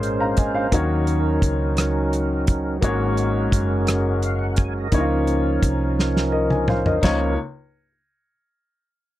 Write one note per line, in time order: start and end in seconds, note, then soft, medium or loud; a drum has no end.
0.00 0.68 G#1 medium
0.00 0.73 A#2 medium
0.00 0.68 G#3 medium
0.00 0.67 A#3 medium
0.00 0.68 C#4 medium
0.00 0.71 C#4 medium
0.00 0.68 G#4 medium
0.00 0.71 A#4 medium
0.00 0.55 C5 medium
0.00 0.67 C5 medium
0.00 closed hi-hat soft
0.20 0.37 F5 soft
0.20 0.36 A#5 medium
0.37 0.54 D#5 soft
0.37 0.54 G#5 medium
0.37 kick medium
0.37 closed hi-hat medium
0.54 0.88 C5 medium
0.54 0.88 F5 medium
0.71 1.38 D#2 medium
0.71 1.73 D#3 medium
0.71 0.78 F3 medium
0.71 2.77 A#3 medium
0.71 2.78 C#4 medium
0.71 2.78 D#4 medium
0.71 2.78 F#4 medium
0.71 2.78 A#4 medium
0.71 2.79 C#5 medium
0.71 kick medium
0.71 closed hi-hat medium
0.79 2.81 F#3 medium
1.07 closed hi-hat soft
1.42 2.78 C#2 medium
1.42 kick medium
1.42 closed hi-hat medium
1.77 cross-stick loud
1.77 closed hi-hat medium
2.13 closed hi-hat soft
2.47 kick medium
2.47 closed hi-hat medium
2.81 3.48 G#1 loud
2.81 3.83 G#2 medium
2.81 4.88 G#3 medium
2.81 4.88 A#3 medium
2.81 4.88 C#4 medium
2.81 4.88 F#4 medium
2.81 4.89 G#4 medium
2.81 2.89 A4 medium
2.81 4.89 C#5 medium
2.81 kick medium
2.81 closed hi-hat medium
2.89 4.92 A#4 medium
3.17 closed hi-hat medium
3.52 4.88 F#1 medium
3.52 kick medium
3.52 closed hi-hat medium
3.87 cross-stick loud
3.87 closed hi-hat medium
4.22 4.39 F5 soft
4.22 closed hi-hat soft
4.39 4.56 F#5 medium
4.56 4.74 G#5 medium
4.56 kick medium
4.56 closed hi-hat medium
4.78 5.09 D#5 soft
4.91 5.58 C#2 medium
4.91 6.99 F3 medium
4.91 6.98 A#3 medium
4.91 5.93 C#4 medium
4.91 6.99 C#4 medium
4.91 6.98 D#4 medium
4.91 6.99 D#4 medium
4.91 4.99 E4 soft
4.91 6.99 A#4 medium
4.91 6.30 C#5 medium
4.91 kick medium
4.91 closed hi-hat medium
5.00 7.02 F4 medium
5.27 closed hi-hat soft
5.62 6.98 C2 medium
5.62 kick medium
5.62 closed hi-hat medium
5.99 snare soft
6.17 snare soft
6.32 6.49 A#4 soft
6.32 6.49 D#5 medium
6.50 6.67 D#5 medium
6.50 6.67 G#5 medium
6.50 mid tom soft
6.68 6.85 C5 soft
6.68 6.84 F5 soft
6.68 mid tom medium
6.86 7.19 A#4 soft
6.86 7.19 D#5 medium
6.86 floor tom medium
7.01 7.35 C#2 medium
7.01 7.36 C#2 medium
7.01 7.35 F3 medium
7.01 7.36 A#3 medium
7.01 7.35 C#4 medium
7.01 7.35 D#4 medium
7.01 7.36 D#4 medium
7.01 7.36 F4 medium
7.01 7.34 A#4 medium
7.01 7.36 C#5 medium
7.01 kick medium
7.01 snare medium
7.01 crash medium